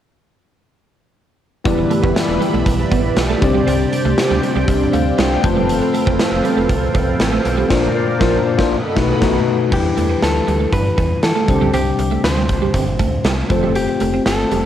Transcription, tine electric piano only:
1.64 E3 B3 E4 G4 D5
3.41 C3 C4 D4 G4 D5
4.68 C4 D4 G4 C5
4.75 D5
4.93 F5
5.18 G5
5.42 A3 C4 F4 C5 A5
7.69 A#2 A#3 D4 F4 C5
8.19 A#2 A#3 D4 F4 C5
8.57 A#2 A#3 D4 F4 C5
8.95 B2 A3 D#4 F#4 B4
9.20 B2 A3 D#4 F#4 B4
9.70 E3 G3 D4 E4 B4
11.47 C3 G3 C4 D4 C5
13.49 A3 C4 F4 C5

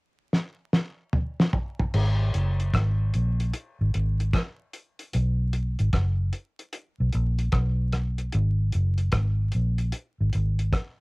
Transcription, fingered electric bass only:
1.94 G#1
2.35 F#1
2.74 G#1
3.15 A#1
3.81 G#1
3.95 G#1
5.15 B1
5.80 G#1
5.94 F#1
7.00 B1
7.14 A#1
7.53 B1
8.34 G#1
8.75 F#1
9.13 G#1
9.55 A#1
10.21 G#1
10.35 G#1

